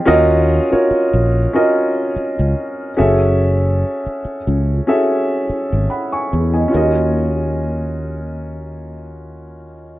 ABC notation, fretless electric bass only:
X:1
M:4/4
L:1/16
Q:"Swing 16ths" 1/4=72
K:Gblyd
V:1 name="Fretless electric bass" clef=bass
E,,3 z2 B,,,2 z4 D,, z2 G,,,2- | G,,,3 z2 D,,2 z4 A,,, z2 _F,,2 | E,,16 |]